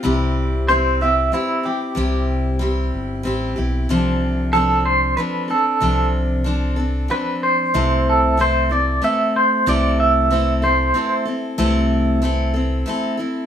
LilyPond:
<<
  \new Staff \with { instrumentName = "Clean electric guitar" } { \time 3/4 \key a \minor \tempo 4 = 94 r4 c''8 e''8 e'8 g'8~ | g'8 r2 r8 | r4 a'8 c''8 b'8 a'8~ | a'8 r4. b'8 c''8~ |
c''8 a'8 c''8 d''8 e''8 c''8 | d''8 e''4 c''4 r8 | r2. | }
  \new Staff \with { instrumentName = "Steel-string acoustic guitar" } { \time 3/4 \key a \minor <c g c' e' g'>4 <g c' e' g'>8 <c' e' g'>8 <g c' e' g'>8 <c' e' g'>8 | <c g c' e' g'>4 <g c' e' g'>4 <g c' e' g'>8 <c' e' g'>8 | <c f c' d' a'>4 <f c' d' a'>4 <f c' d' a'>8 <c' d' a'>8 | <c f c' d' a'>4 <f c' d' a'>8 <c' d' a'>8 <f c' d' a'>4 |
<c a c' e' a'>4 <a c' e' a'>8 <c' e' a'>8 <a c' e' a'>4 | <c a c' e' a'>4 <a c' e' a'>8 <c' e' a'>8 <a c' e' a'>8 <c' e' a'>8 | <c a c' e' a'>4 <a c' e' a'>8 <c' e' a'>8 <a c' e' a'>8 <c' e' a'>8 | }
  \new Staff \with { instrumentName = "Fingered electric bass" } { \clef bass \time 3/4 \key a \minor c,2 r4 | c,4. g,,8 a,,8 b,,8 | c,2 r4 | c,2 r4 |
c,2 r4 | c,2 r4 | c,2 r4 | }
>>